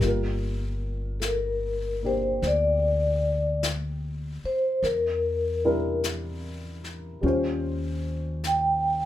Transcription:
Already playing: G3
0.00 G1 A#3 F4, brush sweep, snare
0.08 A#4
1.20 A4, brush sweep, snare, hi-hat pedal
1.25 A#4
2.03 A#3 D4 G4 C5
2.42 D2, brush sweep, snare
2.47 D5
3.63 brush sweep, snare, hi-hat pedal
4.44 C5, muted upright bass stroke
4.83 E2 A#4, brush sweep, snare
5.65 G3 D4 E4 A#4
6.04 brush sweep, snare, hi-hat pedal
6.84 snare
7.21 D#2 G3 C#4 F4, brush sweep
7.26 C5
8.44 G5, brush sweep, snare, hi-hat pedal

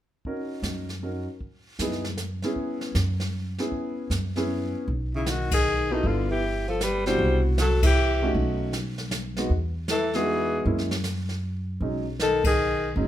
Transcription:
0.25 C#4 D#4 F#4 A#4, brush sweep, kick
0.62 F#2, snare, hi-hat pedal
0.89 snare
1.03 C#4 D#4 F#4 A#4
1.41 brush sweep, kick
1.79 F#2 B3 D#4 E4 G#4, snare, hi-hat pedal
1.92 snare
2.04 snare
2.17 snare, hi-hat pedal
2.42 B3 C#4 E4 G#4, snare
2.56 brush sweep, kick
2.81 snare
2.95 F#2, snare, hi-hat pedal
3.20 snare
3.59 B3 C#4 E4 G#4, snare
3.72 brush sweep, kick
4.10 F#2, snare, hi-hat pedal
4.36 B3 C#4 E4 G#4, snare
4.88 B1, brush sweep, kick
5.15 C#3 E4
5.26 D#3 F#4, snare, hi-hat pedal
5.51 D#3 G#4, kick, ride
5.91 B2 B3 D#4 E4 F4 A4
6.04 G1 D3 F4, brush sweep, kick
6.30 E3 G4
6.68 F3 A4
6.81 G3 B4, snare, hi-hat pedal
7.06 B2 G3 D4 E4 F#4 C5, snare
7.19 C2, brush sweep, kick
7.58 F#3 A4, snare, hi-hat pedal
7.83 E3 G4, kick, ride
8.22 A3 C#4 D#4 F#4
8.34 B1, brush sweep, kick
8.73 snare, hi-hat pedal
8.98 snare
9.11 snare, hi-hat pedal
9.37 G#3 B3 D#4 F#4, snare
9.50 E2, brush sweep, kick
9.88 E3 A4, snare, hi-hat pedal
10.13 E3 G#3 B3 D#4 F#4 G#4, snare
10.65 F#2 G#3 A#3 C#4 E4, brush sweep, kick
10.78 snare
10.91 snare
11.04 snare, hi-hat pedal
11.29 snare
11.81 B1 F#3 G#3 C#4 D#4, brush sweep, kick
12.20 D#3 A4, snare, hi-hat pedal
12.44 D#3 G#4, kick, ride
12.96 F#1 F#3 G#3 C#4 D#4, brush sweep, kick

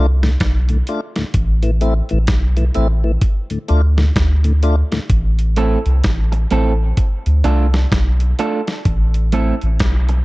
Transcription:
Already playing: C2
0.23 D2 A2, snare
0.40 B1, kick, snare, closed hi-hat
0.69 D2 A2, closed hi-hat
0.87 A3 D4 F4, closed hi-hat
1.16 D2 A2, snare, closed hi-hat
1.34 A1, kick, closed hi-hat
1.63 A2 E3, closed hi-hat
1.81 A3 C4 E4, closed hi-hat
2.09 A1 A2 E3, closed hi-hat
2.27 B1, kick, snare, closed hi-hat
2.57 A2 E3, closed hi-hat
2.75 A1 A3 C4 E4, closed hi-hat
3.04 A2 E3
3.21 kick, closed hi-hat
3.50 D2 A2, closed hi-hat
3.68 D2 A3 D4 F4, closed hi-hat
3.97 D2 A2, snare
4.16 D2, kick, snare, closed hi-hat
4.44 D2 A2, closed hi-hat
4.63 A3 D4 F4, closed hi-hat
4.92 D2 A2, snare, closed hi-hat
5.10 A1, kick, closed hi-hat
5.39 closed hi-hat
5.56 A3 C4 E4 A4, closed hi-hat
5.86 C2, closed hi-hat
6.04 A1, kick, snare, closed hi-hat
6.32 muted clean electric guitar stroke, closed hi-hat
6.51 A1 A3 C4 E4 A4, closed hi-hat
6.97 kick, closed hi-hat
7.26 D2, closed hi-hat
7.44 C2 A3 D4 F4 A4, closed hi-hat
7.74 muted clean electric guitar stroke, snare
7.92 B1, kick, snare, closed hi-hat
8.20 closed hi-hat
8.39 A3 D4 F4 A4, closed hi-hat
8.67 snare, closed hi-hat
8.85 A1, kick, closed hi-hat
9.14 closed hi-hat
9.32 A3 C4 E4 A4, closed hi-hat
9.61 A1, closed hi-hat
9.80 B1, kick, snare, closed hi-hat
10.09 muted clean electric guitar stroke, closed hi-hat

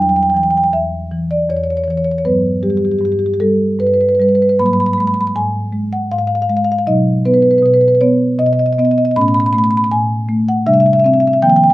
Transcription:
Already playing: E2 F#3 D4
0.02 G5
0.09 G5
0.16 G5
0.23 G5
0.30 G5
0.34 E3 G5
0.43 G5
0.51 G5
0.57 G5
0.64 G5
0.73 E2 E5
1.12 E3
1.31 D5
1.50 E2 C#5
1.56 C#5
1.64 C#5
1.70 C#5
1.77 C#5
1.84 E3 C#5
1.90 C#5
1.97 C#5
2.04 C#5
2.11 C#5
2.18 C#5
2.25 G2 F#3 B3 B4
2.63 G3 G4
2.70 G4
2.77 G4
2.85 G4
2.92 G4
2.98 G2 G4
3.05 G4
3.12 G4
3.19 G4
3.26 G4
3.34 G4
3.40 G3 A4
3.79 G2 B4
3.87 B4
3.94 B4
4.01 B4
4.09 B4
4.15 B4
4.20 G3 B4
4.29 B4
4.35 B4
4.42 B4
4.49 B4
4.59 G#2 F#3 A#3 B5
4.66 B5
4.73 B5
4.80 B5
4.86 B5
4.93 B5
4.98 G#3 B5
5.07 B5
5.14 B5
5.21 B5
5.27 B5
5.36 G#2 G#5
5.73 G#3
5.93 F#5
6.12 G#2 F5
6.18 F5
6.27 F5
6.35 F5
6.42 F5
6.50 G#3 F5
6.57 F5
6.64 F5
6.72 F5
6.79 F5
6.87 B2 F#3 D#4 D#5
7.25 B3 B4
7.34 B4
7.42 B4
7.51 B4
7.58 B4
7.62 B2 B4
7.74 B4
7.81 B4
7.88 B4
7.95 B4
8.01 B3 C#5
8.39 B2 D#5
8.46 D#5
8.53 D#5
8.59 D#5
8.66 D#5
8.73 D#5
8.78 B3 D#5
8.85 D#5
8.91 D#5
8.98 D#5
9.05 D#5
9.11 D#5
9.16 A2 A3 C#4 B5
9.21 B5
9.28 B5
9.34 B5
9.40 B5
9.46 B5
9.53 A3 B5
9.58 B5
9.64 B5
9.71 B5
9.77 B5
9.84 B5
9.91 A2 G#5
10.29 A3
10.49 F#5
10.66 C3 G3 D4 E5
10.74 E5
10.80 E5
10.86 E5
10.93 E5
10.99 E5
11.04 C4 E5
11.14 E5
11.20 E5
11.27 E5
11.33 E5
11.42 D#3 F3 A#3 G5
11.50 G5
11.56 G5
11.64 G5
11.70 G5

